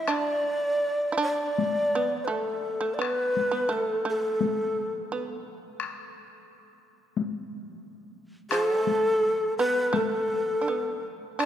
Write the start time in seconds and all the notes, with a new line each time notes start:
Already playing: E5
0.08 D4 D5, taiko rim
1.12 E4
1.18 D4
1.22 D5
1.58 taiko high
1.95 B3
2.25 A3 B4
2.32 A4
2.81 A3
2.94 D5
2.99 B3 B4, taiko rim
3.37 taiko high
3.51 B3
3.69 A3 A4
4.05 A3
4.09 A4
4.41 taiko high
5.12 B3
5.80 taiko rim
7.17 taiko high
8.51 F3 A4, taiko rim
8.86 A3, taiko high
9.58 B3 B4
9.93 A3 A4, taiko high
10.61 D4
10.68 B3
11.39 D4 D5, taiko rim